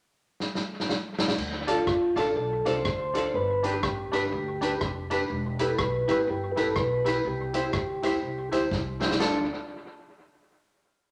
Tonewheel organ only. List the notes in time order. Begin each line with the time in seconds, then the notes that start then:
1.70 F4
2.18 A4
2.37 A4
2.67 C5
3.35 B4
3.65 G4
3.85 G4
5.61 A4
5.80 B4
6.30 G4
6.51 B4
6.60 A4
6.79 B4
7.27 G4
7.76 G4
9.22 D4